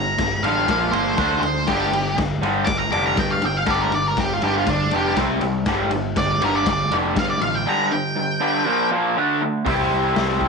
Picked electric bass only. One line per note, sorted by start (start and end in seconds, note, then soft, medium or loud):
0.00 0.17 G1 medium
0.19 0.42 G1 medium
0.43 0.67 A1 medium
0.68 0.92 A#1 loud
0.93 1.17 G1 medium
1.18 1.42 D2 medium
1.42 1.67 D2 medium
1.68 2.16 G1 medium
2.18 2.41 G1 medium
2.41 2.66 G1 medium
2.67 2.92 G1 medium
2.93 3.17 F1 loud
3.18 3.42 G2 loud
3.43 3.67 G1 medium
3.67 4.15 G1 loud
4.18 4.41 G1 loud
4.43 4.66 G1 medium
4.67 4.91 G1 medium
4.93 5.16 F1 medium
5.17 5.41 C2 loud
5.42 5.65 C2 medium
5.66 6.15 G1 loud
6.16 6.40 G1 loud
6.42 6.66 G1 medium
6.66 6.90 G1 loud
6.92 7.16 F1 medium
7.16 7.40 G2 loud
7.42 7.66 A1 medium
9.66 9.90 C2 loud
9.91 10.15 C2 loud
10.16 10.48 C2 loud